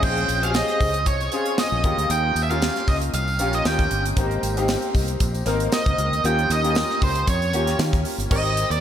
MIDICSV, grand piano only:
0, 0, Header, 1, 2, 480
1, 0, Start_track
1, 0, Tempo, 517241
1, 28, Time_signature, 4, 2, 24, 8
1, 8171, End_track
2, 0, Start_track
2, 0, Title_t, "Grand piano"
2, 0, Program_c, 0, 0
2, 0, Control_c, 0, 64, 127
2, 26, Note_on_c, 0, 60, 64
2, 29, Note_on_c, 0, 61, 65
2, 33, Note_on_c, 0, 65, 61
2, 38, Control_c, 0, 64, 0
2, 38, Note_on_c, 0, 68, 76
2, 229, Control_c, 0, 64, 127
2, 255, Note_off_c, 0, 60, 0
2, 256, Note_off_c, 0, 61, 0
2, 258, Note_off_c, 0, 65, 0
2, 261, Note_off_c, 0, 68, 0
2, 397, Note_on_c, 0, 60, 67
2, 399, Note_on_c, 0, 61, 59
2, 403, Note_on_c, 0, 65, 58
2, 408, Note_on_c, 0, 67, 63
2, 456, Note_off_c, 0, 67, 0
2, 465, Note_on_c, 0, 68, 80
2, 923, Note_off_c, 0, 60, 0
2, 924, Note_off_c, 0, 61, 0
2, 926, Note_off_c, 0, 65, 0
2, 957, Note_off_c, 0, 68, 0
2, 1224, Note_on_c, 0, 60, 69
2, 1230, Note_on_c, 0, 61, 62
2, 1232, Note_on_c, 0, 65, 62
2, 1238, Note_on_c, 0, 68, 74
2, 1682, Note_off_c, 0, 60, 0
2, 1685, Note_off_c, 0, 61, 0
2, 1686, Note_off_c, 0, 65, 0
2, 1689, Note_off_c, 0, 68, 0
2, 1706, Note_on_c, 0, 58, 81
2, 1710, Note_on_c, 0, 61, 69
2, 1713, Note_on_c, 0, 65, 72
2, 1717, Note_on_c, 0, 67, 87
2, 1721, Control_c, 0, 64, 0
2, 1903, Control_c, 0, 64, 127
2, 2187, Note_off_c, 0, 58, 0
2, 2190, Note_off_c, 0, 61, 0
2, 2191, Note_off_c, 0, 65, 0
2, 2193, Note_off_c, 0, 67, 0
2, 2316, Note_on_c, 0, 58, 71
2, 2320, Note_on_c, 0, 61, 70
2, 2324, Note_on_c, 0, 65, 66
2, 2327, Note_on_c, 0, 67, 73
2, 2843, Note_off_c, 0, 58, 0
2, 2845, Note_off_c, 0, 61, 0
2, 2847, Note_off_c, 0, 65, 0
2, 2848, Note_off_c, 0, 67, 0
2, 3145, Note_on_c, 0, 58, 69
2, 3150, Note_on_c, 0, 61, 70
2, 3153, Note_on_c, 0, 65, 65
2, 3157, Note_on_c, 0, 67, 81
2, 3371, Note_off_c, 0, 58, 0
2, 3374, Note_off_c, 0, 61, 0
2, 3378, Note_off_c, 0, 65, 0
2, 3384, Note_off_c, 0, 67, 0
2, 3385, Note_on_c, 0, 58, 66
2, 3388, Note_on_c, 0, 61, 65
2, 3392, Note_on_c, 0, 65, 63
2, 3398, Note_on_c, 0, 67, 81
2, 3400, Control_c, 0, 64, 0
2, 3547, Control_c, 0, 64, 127
2, 3779, Note_off_c, 0, 58, 0
2, 3780, Note_off_c, 0, 61, 0
2, 3782, Note_off_c, 0, 65, 0
2, 3785, Note_off_c, 0, 67, 0
2, 3868, Note_on_c, 0, 58, 90
2, 3872, Note_on_c, 0, 60, 72
2, 3876, Note_on_c, 0, 63, 77
2, 3879, Note_on_c, 0, 67, 89
2, 3882, Control_c, 0, 64, 0
2, 4053, Control_c, 0, 64, 127
2, 4097, Note_off_c, 0, 58, 0
2, 4098, Note_off_c, 0, 60, 0
2, 4100, Note_off_c, 0, 63, 0
2, 4102, Note_off_c, 0, 67, 0
2, 4239, Note_on_c, 0, 58, 81
2, 4242, Note_on_c, 0, 60, 87
2, 4245, Note_on_c, 0, 63, 79
2, 4249, Note_on_c, 0, 67, 103
2, 4764, Note_off_c, 0, 58, 0
2, 4766, Note_off_c, 0, 60, 0
2, 4768, Note_off_c, 0, 63, 0
2, 4769, Note_off_c, 0, 67, 0
2, 5064, Note_on_c, 0, 58, 91
2, 5067, Note_on_c, 0, 60, 79
2, 5071, Note_on_c, 0, 63, 82
2, 5075, Note_on_c, 0, 70, 96
2, 5522, Note_off_c, 0, 58, 0
2, 5524, Note_off_c, 0, 60, 0
2, 5526, Note_off_c, 0, 63, 0
2, 5528, Note_off_c, 0, 70, 0
2, 5788, Note_on_c, 0, 58, 76
2, 5791, Note_on_c, 0, 61, 70
2, 5795, Note_on_c, 0, 65, 73
2, 5798, Note_on_c, 0, 67, 81
2, 5799, Control_c, 0, 64, 0
2, 5959, Control_c, 0, 64, 127
2, 6016, Note_off_c, 0, 58, 0
2, 6018, Note_off_c, 0, 61, 0
2, 6020, Note_off_c, 0, 65, 0
2, 6022, Note_off_c, 0, 67, 0
2, 6152, Note_on_c, 0, 58, 76
2, 6157, Note_on_c, 0, 61, 67
2, 6160, Note_on_c, 0, 65, 69
2, 6165, Note_on_c, 0, 67, 78
2, 6680, Note_off_c, 0, 58, 0
2, 6683, Note_off_c, 0, 61, 0
2, 6685, Note_off_c, 0, 65, 0
2, 6687, Note_off_c, 0, 67, 0
2, 6989, Note_on_c, 0, 58, 73
2, 6992, Note_on_c, 0, 61, 66
2, 6997, Note_on_c, 0, 65, 67
2, 6999, Note_on_c, 0, 67, 85
2, 7445, Note_off_c, 0, 58, 0
2, 7446, Note_off_c, 0, 61, 0
2, 7449, Note_off_c, 0, 65, 0
2, 7450, Note_off_c, 0, 67, 0
2, 7706, Note_on_c, 0, 60, 68
2, 7710, Note_on_c, 0, 63, 68
2, 7714, Note_on_c, 0, 67, 63
2, 7717, Note_on_c, 0, 70, 78
2, 7720, Control_c, 0, 64, 0
2, 7880, Control_c, 0, 64, 127
2, 8171, Note_off_c, 0, 60, 0
2, 8171, Note_off_c, 0, 63, 0
2, 8171, Note_off_c, 0, 67, 0
2, 8171, Note_off_c, 0, 70, 0
2, 8171, End_track
0, 0, End_of_file